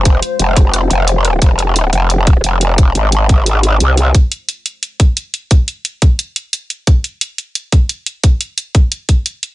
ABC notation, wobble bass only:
X:1
M:4/4
L:1/8
Q:1/4=176
K:Fm
V:1 name="Wobble bass" clef=bass
F,,, z F,,,3 F,,,3 | F,,,3 F,,,3 F,,,2- | F,,, A,,,4- A,,, C,,2 | z8 |
z8 | z8 | z8 |]